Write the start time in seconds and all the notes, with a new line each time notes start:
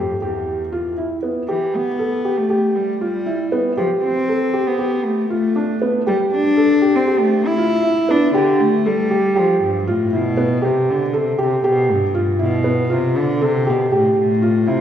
Already playing: F2 G4
0.21 E2 G4
0.72 F4
0.98 E4
1.23 B3
1.48 E3 G4
1.75 B3
1.99 A4
2.25 G4
2.37 A3
2.50 G4
2.76 G3
3.01 G3 F4
3.26 E4
3.52 B3
3.77 F3 G4
4.03 C4
4.28 A4
4.54 G4
4.67 B3
4.79 G4
5.05 A3
5.30 A3 F4
5.56 D4
5.82 B3
6.07 G3 G4
6.32 D4
6.57 A4
6.82 G4
6.96 C4
7.08 G4
7.20 A3
7.46 E4
7.58 F4
7.83 E4
8.09 B3 D4
8.34 D3 G4
8.60 A3
8.86 G3 A4
9.11 G4
9.36 F3 G4
9.63 G2
9.87 A2 F4
10.12 B2 E4
10.37 B3
10.62 C3 G4
10.90 D3
11.13 C3 A4
11.38 C3 G4
11.64 B2 G4
11.92 G2
12.14 F4
12.39 B2 E4
12.64 B3
12.90 C3 F4
13.16 D3
13.41 C3 A4
13.67 B2 G4
13.92 A2 G4
14.19 A2
14.42 F4
14.67 C3 E4